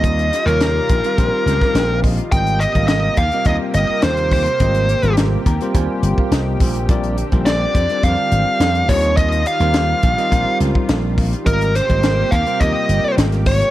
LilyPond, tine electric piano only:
\new Staff \with { instrumentName = "Tine electric piano" } { \time 4/4 \key aes \major \tempo 4 = 105 << { r2. g''8 ees''8 | r1 | r4. bes''8 aes''8 g''16 f''16 ees''8 c''8 | r1 |
r1 | r1 | } \\ { <g c' f' bes' ees''>8 c''16 <c g f' bes' des''>8. r16 <g c' f' bes' f''>16 <g c' f' bes' c''>4.~ <g c' f' bes' c''>16 r16 | <g c' f' bes' ees''>8 c''16 <g c' f' bes' f''>8. r16 <g c' f' bes' ees''>16 <g c' f' bes' f''>4.~ <g c' f' bes' f''>16 r16 | <g c' f' bes' ees''>8 r16 <g c' f' bes' c''>8. <bes' f''>16 <g c' f' bes' c''>16 <g c' f' bes' c''>4.~ <g c' f' bes' c''>16 r16 | <g c' f' bes' d''>8 <bes' d''>16 <g c' f' bes' c''>8. d''16 <g c' f' bes' d''>16 <g c' f' bes' d''>4. <g c' f' bes' ees''>8~ |
<g c' f' bes' ees''>8 <bes' des''>16 <g c' f' bes' c''>8. r16 <g c' f' bes' ees''>16 <g c' f' bes' c''>4.~ <g c' f' bes' c''>16 r16 | <g c' f' bes' ees''>8 bes'16 <g c' f' bes' ees''>8. <bes' c''>16 <g c' f' bes' c''>16 <g c' f' bes' ees''>4.~ <g c' f' bes' ees''>16 r16 | } >> }